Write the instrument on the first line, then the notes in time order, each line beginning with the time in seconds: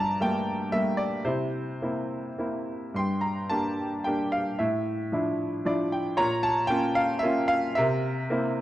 grand piano
Already playing: G2 D5 A5 A#5
0.20 G3 A3 A#3 G5
0.72 G3 A3 A#3 E5
0.97 D5
1.25 C3 E4 C5
1.82 A#3 C4 E4
2.38 A#3 C4 E4
2.94 G2 C6
2.98 G5
3.21 A#5
3.50 A#3 D4 G4 A5
4.04 A#3 D4 G4 G5
4.32 F5
4.59 A2 E5
5.12 F3 D4 E4
5.65 F3 D4 E4 D5
5.92 G5
6.17 A#2 C#5 A#5
6.43 A5
6.67 A#3 C#4 F4 G5
6.95 F5
7.19 A#3 E5
7.24 C#4 F4
7.48 F5
7.75 C3 A#4 E5
8.30 A#3 C4 E4